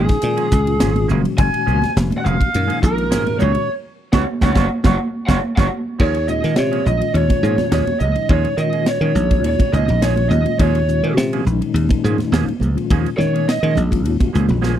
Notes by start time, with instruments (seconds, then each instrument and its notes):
Already playing: tonewheel organ A#2 D#3 G#3 C#4 D#4, lead electric guitar G#4, flute G#5
0.09 muted clean electric guitar stroke, kick, snare, ride
0.22 slap bass A#2, tonewheel organ A#2 D#3 G#3 C#4 F4, muted clean electric guitar stroke, hi-hat pedal, ride
0.37 clean electric guitar F3 A#3 C#4 G#4, ride
0.51 slap bass C#2, kick, snare, hi-hat pedal
0.67 ride
0.79 slap bass G#1, tonewheel organ A#2 D#3 G#3 C#4 F4, clean electric guitar F3 A#3 C#4 G#4, snare, hi-hat pedal, ride
0.95 muted clean electric guitar stroke, ride, high conga
1.08 slap bass F#1, tonewheel organ A#2 D#3 G#3 C#4 F#4, clean electric guitar F3 A#3 C#4 G#4, hi-hat pedal, low conga
1.24 muted clean electric guitar stroke, ride
1.38 slap bass F#1, lead electric guitar G#5, flute G#6, kick, hi-hat pedal, ride
1.53 muted clean electric guitar stroke, muted slap bass stroke, ride
1.66 slap bass C#2, clean electric guitar F3 A#3 C#4 G#4, hi-hat pedal
1.81 muted clean electric guitar stroke, muted slap bass stroke, snare, ride, high conga
1.96 slap bass F1, tonewheel organ A#2 D#3 G#3 C#4 F#4, snare, hi-hat pedal, ride
2.10 muted clean electric guitar stroke, ride, high conga
2.18 lead electric guitar F#5, flute F#6
2.24 slap bass F1, clean electric guitar F3 A#3 C#4 G#4, lead electric guitar F5, flute F6, hi-hat pedal, low conga
2.39 muted clean electric guitar stroke, kick, ride
2.53 slap bass F#2, tonewheel organ A#2 D#3 G#3 C#4 D#4, muted clean electric guitar stroke, hi-hat pedal, ride
2.68 clean electric guitar F3 A#3 C#4 G#4, ride
2.83 slap bass A#1, lead electric guitar A#4, flute A#5, kick, hi-hat pedal
2.98 ride
3.10 slap bass G#2, tonewheel organ A#2 D#3 G#3 C#4 F#4, clean electric guitar F3 A#3 C#4 G#4, snare, hi-hat pedal, ride
3.26 muted clean electric guitar stroke, ride, high conga
3.39 slap bass C#2, tonewheel organ A#2 D#3 G#3 C#4 F#4, clean electric guitar F#3 B3 D#4 G#4, lead electric guitar C#5, flute C#6, hi-hat pedal, low conga
3.54 muted clean electric guitar stroke, ride
4.12 slap bass C#2, tonewheel organ G#3 B3 C#4, clean electric guitar B3 C#4 F#4, lead electric guitar B4 C#5 F#5, flute C#6, kick, snare, high conga
4.41 slap bass C#2, tonewheel organ G#3 B3 C#4, clean electric guitar B3 C#4 F#4, lead electric guitar B4 C#5 F#5, flute C#6, kick, snare, high conga
4.55 slap bass F#1, tonewheel organ F3 F#3 A#3, clean electric guitar C#4 F4 F#4, lead electric guitar C#5 F5 F#5, flute C#6, kick, snare, high conga
4.83 slap bass F#1, tonewheel organ F3 F#3 A#3, clean electric guitar C#4 F4 F#4, lead electric guitar C#5 F5 F#5, flute C#6, kick, snare, high conga
5.27 slap bass F#1, tonewheel organ F3 F#3 A#3, clean electric guitar C#4 F4 F#4, lead electric guitar C#5 F5 F#5, flute C#6, kick, snare, high conga
5.56 slap bass F#1, tonewheel organ F3 F#3 A#3, clean electric guitar C#4 F4 F#4, lead electric guitar C#5 F5 F#5, flute C#6, kick, snare, high conga
5.99 slap bass D#2, clean electric guitar F3 A#3 C#4 G#4, lead electric guitar C#5, kick, crash
6.15 ride
6.28 tonewheel organ A#2 D#3 G#3 C#4 F4, lead electric guitar D#5, muted clean electric guitar stroke, hi-hat pedal
6.43 slap bass D#3, clean electric guitar A#3 C#4 G#4, snare, ride
6.56 slap bass C3, lead electric guitar C#5, snare, ride
6.71 clean electric guitar F3 A#3 C#4 G#4, ride
6.86 slap bass A#1, tonewheel organ A#2 D#3 G#3 C#4 F4, lead electric guitar D#5, hi-hat pedal, low conga
7.01 muted clean electric guitar stroke, ride
7.14 slap bass D#2, lead electric guitar C#5, ride
7.29 kick, ride, high conga
7.43 slap bass G#2, clean electric guitar F3 A#3 C#4 G#4, hi-hat pedal
7.58 muted clean electric guitar stroke, snare, ride, high conga
7.71 slap bass D#2, clean electric guitar F3 A#3 C#4 G#4, lead electric guitar C#5, snare, ride, high conga
7.87 muted slap bass stroke, muted clean electric guitar stroke, ride, high conga
8.00 slap bass C#2, lead electric guitar D#5, muted clean electric guitar stroke, hi-hat pedal, low conga
8.16 tonewheel organ A#2 D#3 G#3 C#4 D#4, muted clean electric guitar stroke, ride
8.29 slap bass D#2, clean electric guitar F3 A#3 C#4 G#4, lead electric guitar C#5, kick, ride
8.45 ride
8.57 tonewheel organ A#2 D#3 G#3 C#4 F4, slap bass D#3, lead electric guitar D#5, muted clean electric guitar stroke, hi-hat pedal
8.73 clean electric guitar A#3 C#4 G#4, ride
8.86 lead electric guitar C#5, snare, ride
9.01 tonewheel organ A#2 D#3 G#3 C#4 D#4, slap bass D#3, clean electric guitar F3 A#3 C#4 G#4, ride
9.15 slap bass A#1, muted clean electric guitar stroke, hi-hat pedal, low conga
9.30 tonewheel organ A#2 D#3 G#3 C#4 F4, muted clean electric guitar stroke, kick, ride
9.44 slap bass D#2, lead electric guitar C#5, ride
9.59 muted slap bass stroke, kick, ride, high conga
9.72 slap bass C#2, tonewheel organ A#2 D#3 G#3 C#4 D#4, clean electric guitar F3 A#3 C#4 G#4, lead electric guitar D#5, hi-hat pedal
9.88 slap bass A#1, ride, high conga
10.01 clean electric guitar F3 A#3 C#4 G#4, lead electric guitar C#5, snare, ride, high conga
10.16 tonewheel organ A#2 D#3 G#3 C#4 F4, muted clean electric guitar stroke, ride, high conga
10.29 slap bass D#2, lead electric guitar D#5, muted clean electric guitar stroke, hi-hat pedal, low conga
10.46 muted clean electric guitar stroke, ride
10.59 slap bass D#2, clean electric guitar F3 A#3 C#4 G#4, lead electric guitar C#5, kick, ride
10.75 ride
10.88 tonewheel organ A#2 D#3 G#3 C#4 F4, muted clean electric guitar stroke, hi-hat pedal
11.03 slap bass D#3, clean electric guitar A#3 C#4 G#4, ride
11.17 slap bass C3, snare, ride
11.33 clean electric guitar F3 A#3 C#4 G#4, ride
11.45 slap bass A#1, tonewheel organ A#2 D#3 G#3 C#4 D#4, hi-hat pedal, low conga
11.61 muted clean electric guitar stroke, ride
11.74 slap bass D#2, ride
11.89 kick, ride, high conga
12.04 slap bass G#2, clean electric guitar F3 A#3 C#4 G#4, hi-hat pedal
12.18 muted clean electric guitar stroke, snare, ride, high conga
12.32 slap bass D#2, clean electric guitar F3 A#3 C#4 G#4, snare, ride, high conga
12.46 muted slap bass stroke, muted clean electric guitar stroke, ride, high conga
12.60 slap bass C#2, muted clean electric guitar stroke, hi-hat pedal, low conga
12.75 tonewheel organ A#2 D#3 G#3 C#4 F4, muted clean electric guitar stroke, ride
12.90 slap bass D#2, clean electric guitar F3 A#3 C#4 G#4, kick, ride
13.06 ride
13.17 tonewheel organ A#2 D#3 G#3 C#4 D#4, slap bass D#3, lead electric guitar C#5, muted clean electric guitar stroke, snare, hi-hat pedal, high conga
13.34 clean electric guitar A#3 C#4 G#4, ride
13.49 lead electric guitar D#5, snare, ride
13.63 tonewheel organ A#2 D#3 G#3 C#4 G#4, slap bass D#3, clean electric guitar F3 A#3 C#4 G#4, ride
13.75 slap bass A#1, hi-hat pedal, low conga
13.91 tonewheel organ A#2 D#3 G#3 C#4 F4, muted clean electric guitar stroke, kick, ride
14.05 slap bass D#2, ride
14.20 kick, ride, high conga
14.33 slap bass C#2, tonewheel organ A#2 D#3 G#3 C#4 F4, clean electric guitar F3 A#3 C#4 G#4, hi-hat pedal
14.48 slap bass A#1, muted clean electric guitar stroke, ride, high conga, low conga
14.61 clean electric guitar F3 A#3 C#4 G#4, tonewheel organ G#5, snare, high conga